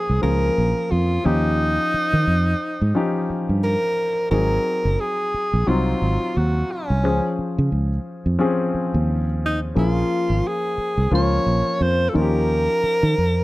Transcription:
0.00 0.22 F3 medium
0.00 0.22 A#3 medium
0.00 0.23 C#4 medium
0.00 0.22 G#4 medium
0.10 0.20 C2 medium
0.22 0.49 C#2 medium
0.22 1.07 F3 medium
0.22 1.08 A#3 medium
0.22 1.08 C#4 medium
0.22 1.08 G#4 medium
0.22 0.93 A#4 loud
0.58 0.72 A#1 medium
0.91 1.17 F2 medium
0.91 1.27 F4 medium
1.24 1.77 D#2 medium
1.24 2.35 F3 medium
1.24 2.35 C#4 medium
1.24 3.37 D#4 loud
1.24 2.35 D#4 medium
1.24 2.36 G4 medium
1.94 muted fingered electric bass stroke soft
2.13 2.24 D#3 medium
2.27 2.53 F2 medium
2.81 2.92 G#2 medium
2.95 3.80 F3 medium
2.95 3.80 C#4 medium
2.95 3.81 D#4 medium
2.95 3.81 G4 medium
3.30 muted fingered electric bass stroke soft
3.49 3.75 G2 medium
3.64 4.28 A#4 medium
4.31 4.57 G#1 loud
4.31 5.16 F#3 medium
4.31 5.16 C4 soft
4.31 5.17 D#4 medium
4.31 5.17 G#4 medium
4.31 5.01 A#4 loud
4.85 4.96 F#1 medium
5.00 5.70 G#4 medium
5.34 muted fingered electric bass stroke soft
5.53 5.64 A#1 medium
5.67 5.93 C2 medium
5.67 6.52 F#3 medium
5.67 6.53 C4 medium
5.67 6.53 D#4 medium
5.67 6.39 F4 medium
5.67 6.53 F4 medium
6.02 6.17 G#1 medium
6.37 6.62 D#2 medium
6.37 6.73 F#4 medium
6.71 7.39 C#4 medium
6.90 7.04 C2 medium
7.04 7.19 C#2 loud
7.04 7.89 F3 medium
7.04 7.89 C#4 medium
7.04 7.90 G#4 medium
7.04 7.89 C5 medium
7.39 muted fingered electric bass stroke soft
7.58 7.69 C#3 medium
7.72 7.98 C#2 medium
8.26 8.36 F2 medium
8.39 9.25 F3 medium
8.39 9.25 C4 medium
8.39 9.25 C#4 medium
8.39 9.25 G#4 medium
8.74 muted fingered electric bass stroke soft
8.94 9.72 D#2 medium
9.46 9.60 D#4 medium
9.75 10.02 A#1 loud
9.75 10.61 F3 medium
9.75 10.61 A#3 medium
9.75 10.61 C#4 medium
9.75 10.49 F4 medium
9.75 10.62 G#4 medium
10.30 10.41 G#1 medium
10.47 11.14 G#4 medium
10.78 muted fingered electric bass stroke soft
10.97 11.09 C2 medium
11.11 11.38 C#2 medium
11.11 11.97 F3 medium
11.11 11.98 A#3 medium
11.11 11.98 C#4 medium
11.11 11.98 F4 medium
11.11 11.84 C#5 medium
11.46 11.61 A#1 medium
11.81 12.06 F2 medium
11.81 12.11 C5 medium
12.09 12.18 A4 medium
12.13 12.67 D#2 loud
12.13 13.24 F3 medium
12.13 13.24 C#4 medium
12.13 13.25 D#4 medium
12.13 12.22 F4 medium
12.13 13.44 A#4 loud
12.22 13.28 G4 medium
12.83 muted fingered electric bass stroke soft
13.03 13.14 D#3 medium
13.18 13.43 F2 medium

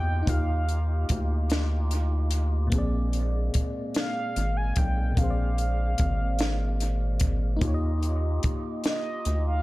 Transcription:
0.00 0.24 E2 loud
0.00 0.23 A#3 medium
0.00 0.21 D#4 medium
0.00 2.69 D#4 medium
0.00 0.24 F4 medium
0.00 2.69 F4 medium
0.00 0.25 G4 medium
0.00 2.69 G4 medium
0.00 0.27 D#5 medium
0.00 0.31 G5 loud
0.23 2.67 A#3 medium
0.23 2.66 D#4 medium
0.27 1.05 D#2 loud
0.27 2.69 F4 medium
0.27 2.70 G4 medium
0.27 1.20 F5 medium
0.27 kick loud
0.27 closed hi-hat medium
0.34 2.72 F5 medium
0.69 closed hi-hat soft
1.09 2.69 D2 loud
1.09 kick medium
1.09 closed hi-hat medium
1.50 snare loud
1.50 closed hi-hat medium
1.91 closed hi-hat medium
2.31 closed hi-hat medium
2.67 5.11 A#2 medium
2.67 5.12 A#3 medium
2.72 3.50 A#1 loud
2.72 7.58 G#3 medium
2.72 7.58 A#3 medium
2.72 5.13 C4 medium
2.72 5.15 G#4 medium
2.72 kick loud
2.72 closed hi-hat medium
2.78 5.16 D5 medium
3.13 closed hi-hat soft
3.54 3.64 G#1 soft
3.54 kick medium
3.54 closed hi-hat medium
3.94 4.58 F5 loud
3.94 snare loud
3.94 closed hi-hat medium
4.36 4.73 G#1 medium
4.36 closed hi-hat medium
4.57 4.79 G#5 loud
4.76 5.14 B1 loud
4.76 5.19 G5 medium
4.76 kick medium
4.76 closed hi-hat medium
5.12 7.56 A#2 medium
5.12 7.57 A#3 medium
5.17 5.95 A#1 loud
5.17 7.58 C4 medium
5.17 7.60 G#4 medium
5.17 7.21 F5 medium
5.17 kick loud
5.17 closed hi-hat medium
5.24 5.27 C5 medium
5.30 7.65 D5 medium
5.58 closed hi-hat soft
5.98 7.59 G#1 loud
5.98 kick medium
5.98 closed hi-hat medium
6.39 snare loud
6.39 closed hi-hat medium
6.80 closed hi-hat soft
7.20 kick medium
7.20 closed hi-hat medium
7.57 9.62 A#3 medium
7.57 9.62 D#4 medium
7.61 8.40 D#2 medium
7.61 9.62 D#4 medium
7.61 9.62 F4 medium
7.61 9.62 G4 medium
7.61 kick loud
7.61 closed hi-hat medium
7.65 9.62 G4 medium
7.65 7.71 C#5 medium
7.74 9.62 D#5 medium
8.03 closed hi-hat soft
8.43 8.53 D2 medium
8.43 kick medium
8.43 closed hi-hat medium
8.84 9.43 D#5 medium
8.84 snare loud
8.84 closed hi-hat medium
9.25 9.62 D2 medium
9.25 closed hi-hat medium
9.47 9.62 F5 loud

